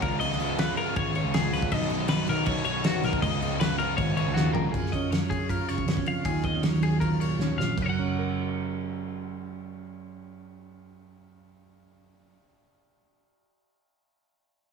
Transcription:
0.02 C#2 C#3 G#3 B3 F4 A#4, kick, crash
0.20 C#3 G#3 B3 F4 D#5, crash
0.31 snare
0.40 G#3 B3 F4, crash
0.58 C#3 G#3 B3 F4 B4, snare, crash
0.77 G#3 B3 F4 A#4, crash
0.95 G#1 C#3 G#3 B3 F4 C#5, kick, crash
1.15 G#3 B3 F4 C#5, crash
1.24 C#2
1.34 C#3 G#3 B3 F4 G#4, snare, crash
1.53 C#2 B4, snare, crash
1.62 kick
1.71 B1 B2 D#3 F#3 B3 D#4 D#5, kick, crash
1.82 snare
1.90 B3 D#4, crash
1.94 F#3
2.08 D#3 F#3 B3 B4, snare, crash
2.12 D#4
2.27 B1 F#3 B3 D#4 A#4, crash
2.46 B2 D#3 F#3 B3 D#4 C#5, kick, crash
2.65 F#3 B3 D#4 C#5, crash
2.84 D#3 F#3 B3 D#4 F#4, snare, crash
3.03 B1 A#4, snare, crash
3.13 kick
3.22 C#2 C#3 G#3 B3 F4 D#5, kick, crash
3.40 G#3 B3 F4, crash
3.60 C#3 G#3 B3 F4 B4, snare, crash
3.78 G#3 B3 F4 A#4, crash
3.97 G#1 C#3 G#3 B3 F4 C#5, kick, crash
4.16 G#3 B3 F4 C#5, crash
4.27 C#2
4.34 D#2 C#3 G#3 B3 F4 F#4, snare
4.53 F2 A#4, floor tom
4.72 F#2 F4 G#4, kick, crash
4.86 snare
4.92 C#4 D#5, kick, ride
5.11 F#2 F#3 C#5, snare, ride
5.30 G#4, kick, ride
5.49 F4 A#4, kick, ride
5.69 C#3 C#5, ride
5.78 kick
5.86 F#2 B3, snare, ride
5.97 C#4, kick
6.06 F2 F4 F5, ride
6.25 D#2 D#3 F4 G#4, kick, ride
6.43 B3 D#5, kick, ride
6.55 C#4
6.63 D#2 F#3 C#5, snare, ride
6.74 snare
6.82 G#4, ride
7.00 F4 A#4, kick, ride
7.20 A#2 C#5, ride
7.39 D#2 C#4, snare
7.58 A#1 F4 F5, snare
7.77 F#1 F#2, kick, crash
7.82 A#4 C#5
7.88 F#3 F#5
7.99 C#4
8.19 A#4

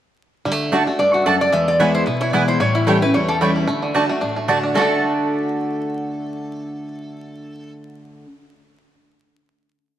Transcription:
0.45 D3 G3
0.51 A3
0.72 D3 A3 D4 F#4 D5 A5
0.87 A3 D4 F#4
0.99 G2 D4 D5
1.14 A3 F#4
1.26 F#2 A3 D4 F#4 A4 D5 A5
1.41 D4 D5
1.52 E2 G#3 E5
1.68 D5
1.80 E3 G#3 B3 E4 B4 C#5 G#5
1.94 E4 C5
2.06 B2 B3 B4
2.21 E4 C#5
2.33 E3 G#3 B3 E4 B4 D5 G#5
2.48 E4 C5
2.60 A2 G3 C#5
2.75 E4
2.87 E3 G3 A3 C#4 E4 G4 C#5 G5
3.02 C#4 E4 B4
3.14 E2 G3 C#5
3.28 G4 A4
3.41 E3 G3 A3 C#4 E4 C#5 G5
3.56 E4
3.67 D3 A3
3.82 D3
3.94 D3 A3 D4 F#4 D5 A5
4.09 A3 D4 F#4
4.21 A2 D4
4.36 A3
4.48 D3 A3 D4 F#4 D5 A5
4.63 D4
4.74 D3 A3 D4 F#4 A4 D5 A5
4.79 F#4 A4

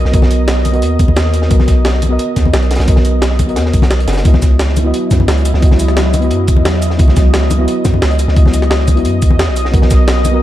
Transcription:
Already playing: B3 F#4 A#4 D#5
0.05 B1, snare
0.11 B1 B3 F#4 A#4 D#5, kick, closed hi-hat
0.22 snare, high conga
0.31 closed hi-hat
0.48 snare, closed hi-hat
0.58 snare
0.65 closed hi-hat, high conga
0.72 B3 F#4 A#4 D#5, closed hi-hat
0.82 D#2, closed hi-hat
0.99 D#2, kick, closed hi-hat
1.08 high conga
1.16 snare, closed hi-hat
1.26 snare
1.34 closed hi-hat
1.42 snare
1.48 B1 B3 F#4 A#4 D#5, kick, closed hi-hat
1.60 snare, high conga
1.67 kick, snare, closed hi-hat
1.85 snare, closed hi-hat
1.94 snare
2.02 closed hi-hat, high conga
2.09 B3 F#4 A#4 D#5
2.19 closed hi-hat
2.36 D#2, kick, snare, closed hi-hat
2.45 high conga
2.54 B1, snare, closed hi-hat
2.62 closed hi-hat
2.71 snare, closed hi-hat
2.75 snare, closed hi-hat
2.80 B1, snare, closed hi-hat
2.86 B1 B3 F#4 A#4 D#5, kick, closed hi-hat
2.96 snare, high conga
3.05 closed hi-hat
3.22 snare, closed hi-hat
3.31 snare
3.39 kick, closed hi-hat, high conga
3.46 B3 F#4 A#4 D#5, closed hi-hat
3.56 D#2, snare, closed hi-hat
3.66 snare
3.73 B1, kick, closed hi-hat
3.82 snare, closed hi-hat, high conga
3.91 snare, closed hi-hat
4.00 closed hi-hat
4.08 F#1, snare, closed hi-hat
4.13 snare, closed hi-hat
4.17 snare, closed hi-hat
4.23 C#2 F#3 B3 E4 F#4 D#5, kick, closed hi-hat
4.34 snare, high conga
4.42 kick, snare, closed hi-hat, cabasa
4.59 snare, closed hi-hat
4.69 snare
4.77 closed hi-hat, high bongo, high conga, cabasa
4.83 B3 E4 F#4 D#5
4.94 closed hi-hat
5.11 F#2, kick, snare, closed hi-hat, high bongo, cabasa
5.20 high conga
5.28 C#2, snare, closed hi-hat
5.37 closed hi-hat
5.45 closed hi-hat, cabasa
5.54 C#2, snare
5.60 C#2 B3 E4 F#4 D#5, kick, closed hi-hat
5.71 snare, high conga
5.80 closed hi-hat, cabasa
5.88 snare
5.97 snare, closed hi-hat
6.06 snare
6.14 closed hi-hat, high bongo, high conga, cabasa
6.21 B3 E4 F#4 D#5, closed hi-hat
6.31 F#2, closed hi-hat
6.47 E2, kick, closed hi-hat, cabasa
6.56 high conga
6.65 snare, closed hi-hat
6.74 snare
6.82 closed hi-hat, cabasa
6.90 snare
6.97 C#2 B3 E4 F#4 D#5, kick, closed hi-hat
7.08 snare, high conga
7.16 kick, snare, closed hi-hat, cabasa
7.34 snare, closed hi-hat
7.42 snare
7.50 closed hi-hat, high bongo, high conga, cabasa
7.58 B3 E4 F#4 D#5
7.68 closed hi-hat
7.85 F#2, kick, snare, closed hi-hat, high bongo, cabasa
7.94 high conga
8.02 C#2, snare, closed hi-hat
8.11 closed hi-hat
8.19 closed hi-hat, cabasa
8.28 C#2, snare
8.34 C#2 B3 E4 F#4 D#5, kick, closed hi-hat
8.45 snare, high conga
8.54 closed hi-hat, cabasa
8.62 snare
8.71 snare, closed hi-hat
8.80 snare
8.88 kick, closed hi-hat, high bongo, high conga, cabasa
8.95 B3 E4 F#4, closed hi-hat
8.99 D#5
9.05 F#2, closed hi-hat
9.22 E2, kick, closed hi-hat, cabasa
9.30 high conga
9.39 snare, closed hi-hat
9.48 B1, snare
9.56 closed hi-hat, cabasa
9.65 snare
9.71 B1 B3 F#4 A#4 D#5, kick, closed hi-hat
9.82 snare, high conga
9.91 kick, snare, closed hi-hat, cabasa
10.08 snare, closed hi-hat
10.17 snare
10.25 closed hi-hat, high bongo, high conga, cabasa
10.32 B3 F#4 A#4 D#5

